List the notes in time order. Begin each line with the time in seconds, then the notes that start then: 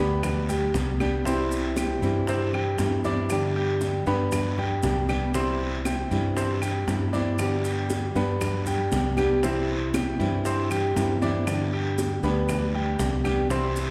Already playing: D2 G4
0.00 G3 B3 D4 B4 B5
0.23 high bongo, high conga, low conga, long guiro, claves, maracas
0.49 G3 G4 G5, muted nylon-string guitar stroke, high conga, low conga, maracas
0.74 C2 G3 B3 D4 G4, high bongo, low bongo, high conga, short guiro, maracas
1.00 G3 B3 D4 G4 G5, high conga, short guiro, claves, maracas
1.25 C3 E3 G3 C4 E4 C5, high bongo, high conga, long guiro, maracas
1.51 high bongo, high conga, maracas
1.76 G3 G4 G5, high bongo, high conga, short guiro, claves, maracas
2.02 G2 E3 G3 C4 E4, high bongo, short guiro, maracas
2.27 C3 C4 C5, high bongo, high conga, long guiro, maracas
2.53 G3 G4 G5, muted nylon-string guitar stroke, high bongo, high conga, claves
2.78 G2 E3 G3 C4 E4, high bongo, low bongo, high conga, short guiro, maracas
3.04 E3 G3 C4 D4 E4 D5 D6, high conga, short guiro, maracas
3.30 D3 G3 B3 D4 G4, high bongo, high conga, long guiro, claves, maracas
3.56 G3 G4 G5, high conga
3.81 high bongo, high conga, short guiro, maracas
4.06 G2 G3 B3 D4 G4 B4 B5, high conga, short guiro, maracas
4.32 high bongo, high conga, low conga, long guiro, claves, maracas
4.58 G3 G4 G5, muted nylon-string guitar stroke, high conga, low conga
4.83 C2 G3 B3 D4 G4, high bongo, low bongo, high conga, short guiro, maracas
5.09 G3 B3 D4 G4 G5, high conga, short guiro, claves, maracas
5.34 C3 E3 G3 C4 E4 C5, high bongo, long guiro, maracas
5.60 high bongo, high conga
5.85 G3 G4 G5, high bongo, high conga, short guiro, claves, maracas
6.11 G2 E3 G3 C4 E4, high bongo, high conga, short guiro, maracas
6.36 C3 C4 C5, high bongo, high conga, long guiro, maracas
6.61 G3 G4 G5, muted nylon-string guitar stroke, high bongo, high conga, claves, maracas
6.88 G2 E3 G3 C4 E4, high bongo, low bongo, high conga, short guiro, maracas
7.13 E3 G3 C4 D4 E4 D5 D6, high conga, short guiro, maracas
7.38 D3 G3 B3 D4 G4, high bongo, high conga, long guiro, claves, maracas
7.64 G3 G4 G5, high conga, maracas
7.90 high bongo, high conga, short guiro, maracas
8.15 G2 G3 B3 D4 G4 B4 B5, high conga, short guiro, maracas
8.41 high bongo, high conga, low conga, long guiro, claves, maracas
8.66 G3 G4 G5, muted nylon-string guitar stroke, high conga, low conga, maracas
8.92 C2 G3 B3 D4 G4, high bongo, low bongo, high conga, short guiro, maracas
9.17 G3 B3 D4 G4 G5, high conga, short guiro, claves, maracas
9.43 C3 E3 G3 C4 E4 C5, high bongo, high conga, long guiro, maracas
9.69 high bongo, high conga
9.94 G3 G4 G5, high bongo, high conga, short guiro, claves, maracas
10.20 G2 E3 G3 C4 E4, high bongo, short guiro, maracas
10.45 C3 C4 C5, high bongo, high conga, long guiro, maracas
10.71 G3 G4 G5, muted nylon-string guitar stroke, high bongo, high conga, claves, maracas
10.96 G2 E3 G3 C4 E4, high bongo, low bongo, high conga, short guiro, maracas
11.22 E3 G3 C4 D4 E4 D5 D6, high conga, short guiro, maracas
11.46 D3 G3 B3 D4 G4, high bongo, high conga, long guiro, claves, maracas
11.73 G3 G4 G5, high conga
11.98 high bongo, high conga, short guiro, maracas
12.23 D2 G3 B3 D4 G4 B4 B5, high conga, short guiro, maracas
12.49 high bongo, high conga, low conga, long guiro, claves, maracas
12.74 G3 G4 G5, muted nylon-string guitar stroke, high conga
12.99 C2 G3 B3 D4 G4, high bongo, low bongo, high conga, short guiro, maracas
13.24 G3 B3 D4 G4 G5, high conga, short guiro, claves, maracas
13.49 C3 E3 G3 C4 E4 C5, high bongo, long guiro, maracas
13.76 high bongo, high conga, maracas